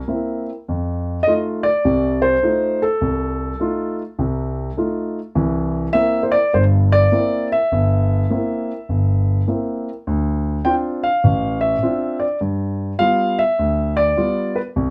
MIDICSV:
0, 0, Header, 1, 2, 480
1, 0, Start_track
1, 0, Tempo, 587084
1, 540, Time_signature, 4, 2, 24, 8
1, 12184, End_track
2, 0, Start_track
2, 0, Title_t, "Grand piano"
2, 0, Program_c, 0, 0
2, 0, Note_on_c, 0, 70, 79
2, 63, Note_on_c, 0, 58, 42
2, 69, Note_on_c, 0, 60, 41
2, 71, Note_on_c, 0, 64, 48
2, 342, Note_off_c, 0, 70, 0
2, 396, Note_off_c, 0, 58, 0
2, 399, Note_off_c, 0, 60, 0
2, 400, Note_off_c, 0, 64, 0
2, 560, Note_on_c, 0, 41, 58
2, 966, Note_off_c, 0, 41, 0
2, 1005, Note_on_c, 0, 75, 92
2, 1037, Note_on_c, 0, 57, 49
2, 1039, Note_on_c, 0, 63, 41
2, 1047, Note_on_c, 0, 65, 56
2, 1078, Note_off_c, 0, 75, 0
2, 1335, Note_on_c, 0, 74, 89
2, 1362, Note_off_c, 0, 57, 0
2, 1363, Note_off_c, 0, 63, 0
2, 1367, Note_off_c, 0, 65, 0
2, 1511, Note_on_c, 0, 36, 64
2, 1511, Note_on_c, 0, 48, 60
2, 1814, Note_on_c, 0, 72, 85
2, 1830, Note_off_c, 0, 74, 0
2, 1921, Note_off_c, 0, 36, 0
2, 1921, Note_off_c, 0, 48, 0
2, 1986, Note_on_c, 0, 63, 45
2, 1987, Note_on_c, 0, 57, 45
2, 1993, Note_on_c, 0, 65, 51
2, 2308, Note_on_c, 0, 69, 79
2, 2309, Note_off_c, 0, 72, 0
2, 2316, Note_off_c, 0, 63, 0
2, 2317, Note_off_c, 0, 57, 0
2, 2320, Note_off_c, 0, 65, 0
2, 2463, Note_on_c, 0, 36, 65
2, 2876, Note_off_c, 0, 36, 0
2, 2942, Note_on_c, 0, 57, 50
2, 2948, Note_on_c, 0, 63, 43
2, 2951, Note_on_c, 0, 65, 58
2, 3229, Note_off_c, 0, 69, 0
2, 3274, Note_off_c, 0, 57, 0
2, 3277, Note_off_c, 0, 63, 0
2, 3278, Note_off_c, 0, 65, 0
2, 3422, Note_on_c, 0, 36, 61
2, 3424, Note_on_c, 0, 48, 67
2, 3836, Note_off_c, 0, 36, 0
2, 3837, Note_off_c, 0, 48, 0
2, 3903, Note_on_c, 0, 63, 42
2, 3904, Note_on_c, 0, 57, 46
2, 3910, Note_on_c, 0, 65, 49
2, 4234, Note_off_c, 0, 63, 0
2, 4235, Note_off_c, 0, 57, 0
2, 4238, Note_off_c, 0, 65, 0
2, 4377, Note_on_c, 0, 36, 65
2, 4377, Note_on_c, 0, 52, 63
2, 4793, Note_off_c, 0, 36, 0
2, 4793, Note_off_c, 0, 52, 0
2, 4847, Note_on_c, 0, 76, 97
2, 4858, Note_on_c, 0, 58, 52
2, 4860, Note_on_c, 0, 60, 45
2, 4865, Note_on_c, 0, 64, 60
2, 5077, Note_off_c, 0, 76, 0
2, 5094, Note_on_c, 0, 72, 58
2, 5164, Note_on_c, 0, 74, 93
2, 5172, Note_off_c, 0, 72, 0
2, 5192, Note_off_c, 0, 58, 0
2, 5193, Note_off_c, 0, 60, 0
2, 5195, Note_off_c, 0, 64, 0
2, 5335, Note_off_c, 0, 74, 0
2, 5343, Note_on_c, 0, 43, 61
2, 5346, Note_on_c, 0, 31, 65
2, 5348, Note_on_c, 0, 72, 74
2, 5418, Note_off_c, 0, 72, 0
2, 5661, Note_on_c, 0, 74, 99
2, 5756, Note_off_c, 0, 43, 0
2, 5758, Note_off_c, 0, 31, 0
2, 5821, Note_on_c, 0, 58, 48
2, 5826, Note_on_c, 0, 60, 45
2, 5831, Note_on_c, 0, 64, 52
2, 6105, Note_off_c, 0, 74, 0
2, 6151, Note_on_c, 0, 76, 89
2, 6154, Note_off_c, 0, 58, 0
2, 6156, Note_off_c, 0, 60, 0
2, 6159, Note_off_c, 0, 64, 0
2, 6312, Note_on_c, 0, 31, 69
2, 6721, Note_off_c, 0, 31, 0
2, 6789, Note_on_c, 0, 58, 48
2, 6793, Note_on_c, 0, 60, 43
2, 6799, Note_on_c, 0, 64, 57
2, 7118, Note_off_c, 0, 58, 0
2, 7120, Note_off_c, 0, 60, 0
2, 7123, Note_off_c, 0, 64, 0
2, 7270, Note_on_c, 0, 31, 64
2, 7680, Note_off_c, 0, 31, 0
2, 7712, Note_off_c, 0, 76, 0
2, 7747, Note_on_c, 0, 58, 44
2, 7753, Note_on_c, 0, 60, 41
2, 7754, Note_on_c, 0, 64, 47
2, 8077, Note_off_c, 0, 58, 0
2, 8080, Note_off_c, 0, 60, 0
2, 8080, Note_off_c, 0, 64, 0
2, 8234, Note_on_c, 0, 38, 70
2, 8643, Note_off_c, 0, 38, 0
2, 8705, Note_on_c, 0, 79, 88
2, 8708, Note_on_c, 0, 60, 52
2, 8711, Note_on_c, 0, 62, 45
2, 8715, Note_on_c, 0, 65, 59
2, 8776, Note_off_c, 0, 79, 0
2, 9022, Note_on_c, 0, 77, 85
2, 9038, Note_off_c, 0, 60, 0
2, 9040, Note_off_c, 0, 62, 0
2, 9041, Note_off_c, 0, 65, 0
2, 9190, Note_on_c, 0, 33, 62
2, 9467, Note_off_c, 0, 77, 0
2, 9490, Note_on_c, 0, 76, 82
2, 9601, Note_off_c, 0, 33, 0
2, 9671, Note_on_c, 0, 60, 50
2, 9674, Note_on_c, 0, 65, 55
2, 9675, Note_on_c, 0, 62, 44
2, 9942, Note_off_c, 0, 76, 0
2, 9971, Note_on_c, 0, 74, 65
2, 10000, Note_off_c, 0, 60, 0
2, 10001, Note_off_c, 0, 65, 0
2, 10002, Note_off_c, 0, 62, 0
2, 10124, Note_off_c, 0, 74, 0
2, 10144, Note_on_c, 0, 43, 62
2, 10559, Note_off_c, 0, 43, 0
2, 10619, Note_on_c, 0, 77, 96
2, 10624, Note_on_c, 0, 55, 54
2, 10628, Note_on_c, 0, 59, 45
2, 10630, Note_on_c, 0, 65, 54
2, 10945, Note_on_c, 0, 76, 91
2, 10949, Note_off_c, 0, 77, 0
2, 10957, Note_off_c, 0, 55, 0
2, 10959, Note_off_c, 0, 59, 0
2, 10960, Note_off_c, 0, 65, 0
2, 11111, Note_on_c, 0, 38, 66
2, 11419, Note_on_c, 0, 74, 96
2, 11437, Note_off_c, 0, 76, 0
2, 11524, Note_off_c, 0, 38, 0
2, 11584, Note_on_c, 0, 55, 46
2, 11586, Note_on_c, 0, 59, 45
2, 11586, Note_on_c, 0, 65, 53
2, 11901, Note_on_c, 0, 71, 62
2, 11915, Note_off_c, 0, 74, 0
2, 11918, Note_off_c, 0, 55, 0
2, 11920, Note_off_c, 0, 59, 0
2, 11920, Note_off_c, 0, 65, 0
2, 11942, Note_off_c, 0, 71, 0
2, 12068, Note_on_c, 0, 36, 70
2, 12184, Note_off_c, 0, 36, 0
2, 12184, End_track
0, 0, End_of_file